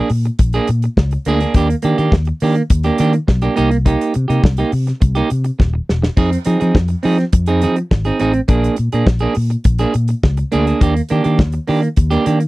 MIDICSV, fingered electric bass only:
0, 0, Header, 1, 2, 480
1, 0, Start_track
1, 0, Tempo, 578592
1, 1284, Time_signature, 4, 2, 24, 8
1, 10353, End_track
2, 0, Start_track
2, 0, Title_t, "Fingered electric bass"
2, 0, Program_c, 0, 33
2, 86, Note_on_c, 0, 46, 101
2, 238, Note_off_c, 0, 46, 0
2, 329, Note_on_c, 0, 34, 89
2, 480, Note_off_c, 0, 34, 0
2, 573, Note_on_c, 0, 46, 93
2, 722, Note_off_c, 0, 46, 0
2, 810, Note_on_c, 0, 37, 103
2, 960, Note_off_c, 0, 37, 0
2, 1047, Note_on_c, 0, 38, 95
2, 1198, Note_off_c, 0, 38, 0
2, 1286, Note_on_c, 0, 39, 93
2, 1437, Note_off_c, 0, 39, 0
2, 1530, Note_on_c, 0, 51, 95
2, 1604, Note_off_c, 0, 51, 0
2, 1649, Note_on_c, 0, 51, 90
2, 1723, Note_off_c, 0, 51, 0
2, 1763, Note_on_c, 0, 39, 87
2, 1915, Note_off_c, 0, 39, 0
2, 2009, Note_on_c, 0, 51, 94
2, 2159, Note_off_c, 0, 51, 0
2, 2245, Note_on_c, 0, 39, 93
2, 2397, Note_off_c, 0, 39, 0
2, 2487, Note_on_c, 0, 51, 101
2, 2638, Note_off_c, 0, 51, 0
2, 2728, Note_on_c, 0, 35, 96
2, 2879, Note_off_c, 0, 35, 0
2, 2972, Note_on_c, 0, 36, 84
2, 3273, Note_off_c, 0, 36, 0
2, 3452, Note_on_c, 0, 48, 88
2, 3525, Note_off_c, 0, 48, 0
2, 3566, Note_on_c, 0, 48, 100
2, 3641, Note_off_c, 0, 48, 0
2, 3685, Note_on_c, 0, 36, 92
2, 3836, Note_off_c, 0, 36, 0
2, 3923, Note_on_c, 0, 48, 107
2, 4075, Note_off_c, 0, 48, 0
2, 4167, Note_on_c, 0, 36, 95
2, 4318, Note_off_c, 0, 36, 0
2, 4409, Note_on_c, 0, 48, 93
2, 4559, Note_off_c, 0, 48, 0
2, 4648, Note_on_c, 0, 27, 92
2, 4799, Note_off_c, 0, 27, 0
2, 4892, Note_on_c, 0, 28, 72
2, 5041, Note_off_c, 0, 28, 0
2, 5122, Note_on_c, 0, 41, 100
2, 5275, Note_off_c, 0, 41, 0
2, 5365, Note_on_c, 0, 53, 103
2, 5441, Note_off_c, 0, 53, 0
2, 5491, Note_on_c, 0, 53, 87
2, 5565, Note_off_c, 0, 53, 0
2, 5602, Note_on_c, 0, 41, 104
2, 5755, Note_off_c, 0, 41, 0
2, 5849, Note_on_c, 0, 53, 99
2, 6000, Note_off_c, 0, 53, 0
2, 6086, Note_on_c, 0, 41, 98
2, 6331, Note_on_c, 0, 53, 95
2, 6343, Note_off_c, 0, 41, 0
2, 6481, Note_off_c, 0, 53, 0
2, 6569, Note_on_c, 0, 32, 96
2, 6720, Note_off_c, 0, 32, 0
2, 6811, Note_on_c, 0, 33, 74
2, 6961, Note_off_c, 0, 33, 0
2, 7045, Note_on_c, 0, 34, 104
2, 7198, Note_off_c, 0, 34, 0
2, 7293, Note_on_c, 0, 46, 93
2, 7367, Note_off_c, 0, 46, 0
2, 7413, Note_on_c, 0, 46, 85
2, 7487, Note_off_c, 0, 46, 0
2, 7524, Note_on_c, 0, 34, 85
2, 7677, Note_off_c, 0, 34, 0
2, 7772, Note_on_c, 0, 46, 106
2, 7923, Note_off_c, 0, 46, 0
2, 8010, Note_on_c, 0, 34, 103
2, 8161, Note_off_c, 0, 34, 0
2, 8254, Note_on_c, 0, 46, 90
2, 8404, Note_off_c, 0, 46, 0
2, 8495, Note_on_c, 0, 37, 109
2, 8645, Note_off_c, 0, 37, 0
2, 8743, Note_on_c, 0, 38, 92
2, 8890, Note_off_c, 0, 38, 0
2, 8974, Note_on_c, 0, 39, 94
2, 9124, Note_off_c, 0, 39, 0
2, 9220, Note_on_c, 0, 51, 91
2, 9292, Note_off_c, 0, 51, 0
2, 9338, Note_on_c, 0, 51, 98
2, 9452, Note_on_c, 0, 39, 97
2, 9465, Note_off_c, 0, 51, 0
2, 9603, Note_off_c, 0, 39, 0
2, 9699, Note_on_c, 0, 51, 96
2, 9848, Note_off_c, 0, 51, 0
2, 9936, Note_on_c, 0, 39, 111
2, 10086, Note_off_c, 0, 39, 0
2, 10177, Note_on_c, 0, 51, 100
2, 10326, Note_off_c, 0, 51, 0
2, 10353, End_track
0, 0, End_of_file